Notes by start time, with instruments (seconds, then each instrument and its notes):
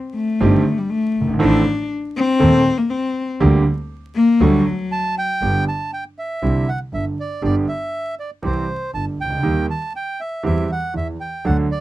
0.15 cello A3
0.40 double bass G1, grand piano G1 G2 D#3 G3 C4 G4
0.78 cello G3
0.90 cello A3
1.16 double bass G1
1.21 grand piano F#1
1.28 grand piano G1
1.33 grand piano G#1
1.39 grand piano A1 A2 D#3 A3 C4 A4, double bass A1, cello D4
2.17 cello C4
2.39 grand piano D#1 D#2 D#3 A3 C4 A4, double bass D#2
2.78 cello A#3
2.90 cello C4
3.40 grand piano D2 D3 G3 A#3 G4, double bass D2
4.16 cello A#3
4.41 double bass D2, grand piano D2 D3 F#3 A3 F#4, cello G3
4.67 cello F#3
4.92 bandoneon A5
5.18 bandoneon G5
5.41 double bass G1, grand piano G1 G2 D3 G3 B3 G4
5.68 bandoneon A5
5.93 bandoneon G5
6.19 bandoneon E5
6.42 grand piano C2 C3 D3 G3 C4 E4, double bass C2
6.68 bandoneon F#5
6.92 grand piano G1 G2, double bass G1, bandoneon E5
7.20 bandoneon D5
7.42 grand piano G1 G2 D3 G3 B3 G4, double bass G1, bandoneon D5
7.68 bandoneon E5
8.20 bandoneon D5
8.43 grand piano C2 C3 E3 G3 C4 G4, double bass C2, bandoneon C5
8.94 grand piano G1 G2, double bass G1, bandoneon A5
9.20 double bass C#2, bandoneon G5
9.24 grand piano C2
9.30 grand piano C#2
9.37 grand piano D2
9.43 grand piano D#2 D#3 G3 A#3 G4, double bass D#2
9.70 bandoneon A5
9.96 bandoneon G5
10.21 bandoneon E5
10.43 grand piano E2 E3 G3 C4 G4, double bass E2, bandoneon E5
10.72 bandoneon F#5
10.94 grand piano E2 E3, double bass E2, bandoneon E5
11.20 bandoneon G5
11.44 grand piano D2 D3 F#3 A3 D4 A4, double bass D2, bandoneon F#5
11.71 bandoneon D5